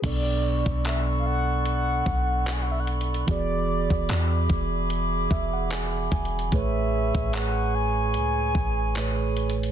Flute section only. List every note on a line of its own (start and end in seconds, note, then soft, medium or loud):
0.04 3.25 A4 medium
0.04 3.25 D5 medium
0.04 9.52 B5 medium
0.04 3.25 C#6 loud
3.28 6.49 G#4 medium
3.28 6.49 E5 medium
3.28 6.49 D6 medium
6.53 9.52 G#4 medium
6.53 9.55 G#5 medium
6.53 9.51 C#6 loud